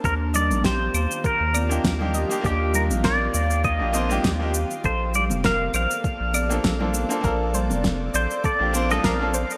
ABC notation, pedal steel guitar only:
X:1
M:4/4
L:1/16
Q:"Swing 16ths" 1/4=100
K:Bb
V:1 name="Pedal steel guitar"
B2 d2 c4 B4 z4 | G2 B2 d4 e4 z4 | c2 d2 f2 f8 z2 | z6 c2 d3 e f3 z |]